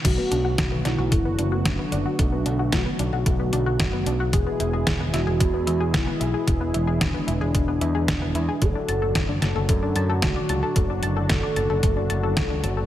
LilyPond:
<<
  \new Staff \with { instrumentName = "Soft synth lead" } { \time 4/4 \key b \dorian \tempo 4 = 112 fis'4. e'4. d'4~ | d'4 fis'2. | gis'4. fis'4. e'4~ | e'4 d'2. |
a'4. a'4. fis'4~ | fis'4 a'2. | }
  \new Staff \with { instrumentName = "Synth arpeggio sound" } { \time 4/4 \key b \dorian a16 b16 d'16 fis'16 a16 b16 d'16 fis'16 a16 b16 d'16 fis'16 a16 b16 d'16 fis'16 | a16 b16 d'16 fis'16 a16 b16 d'16 fis'16 a16 b16 d'16 fis'16 a16 b16 d'16 fis'16 | gis16 b16 e'16 gis'16 gis16 b16 e'16 gis'16 gis16 b16 e'16 gis'16 gis16 b16 e'16 gis'16 | gis16 b16 e'16 gis'16 gis16 b16 e'16 gis'16 gis16 b16 e'16 gis'16 gis16 b16 e'16 gis'16 |
a16 d'16 a''16 a'16 a16 d'16 a''16 a'16 a16 d'16 a''16 a'16 a16 d'16 a''16 a'16 | a16 d'16 a''16 a'16 a16 d'16 a''16 a'16 a16 d'16 a''16 a'16 a16 d'16 a''16 a'16 | }
  \new Staff \with { instrumentName = "Analog synth pad" } { \clef bass \time 4/4 \key b \dorian <d fis a b fis'>1~ | <d fis a b fis'>1 | <b, e gis e' gis'>1~ | <b, e gis e' gis'>1 |
<a, d fis d' fis'>1~ | <a, d fis d' fis'>1 | }
  \new Staff \with { instrumentName = "Picked electric bass" } { \clef bass \time 4/4 \key b \dorian b,,16 r16 b,,8 r8 b,,16 b,,16 fis,,8 fis,,8 fis,,16 r16 fis,,16 r16 | b,,8 b,,8 b,,16 r16 b,,16 b,,16 b,,8 b,,8 fis,,8 b,,8 | e,,16 r16 e,,8 e,,8 e,,16 e,,16 e,8 e,8 b,,16 r16 b,,16 r16 | e,,8 e,,8 r8 e,,16 e,,16 e,,8 e,8 e,,8 e,16 r16 |
fis,,16 r16 fis,,8 fis,,8 fis,,16 fis,,16 fis,8 fis,8 cis,16 r16 cis,16 r16 | fis,,8 fis,,8 fis,,16 r16 fis,,16 fis,,16 fis,,8 fis,,8 cis,8 fis,,8 | }
  \new DrumStaff \with { instrumentName = "Drums" } \drummode { \time 4/4 <cymc hh bd>8 hh8 <hh bd sn>8 <hh sn>8 <hh bd>8 hh8 <hh bd sn>8 hh8 | <hh bd>8 hh8 <hh bd sn>8 hh8 <hh bd>8 hh8 <hh bd sn>8 hh8 | <hh bd>8 hh8 <hh bd sn>8 <hh sn>8 <hh bd>8 hh8 <hh bd sn>8 hh8 | <hh bd>8 hh8 <hh bd sn>8 hh8 <hh bd>8 hh8 <hh bd sn>8 hh8 |
<hh bd>8 hh8 <hh bd sn>8 <hh sn>8 <hh bd>8 hh8 <hh bd sn>8 hh8 | <hh bd>8 hh8 <hh bd sn>8 hh8 <hh bd>8 hh8 <hh bd sn>8 hh8 | }
>>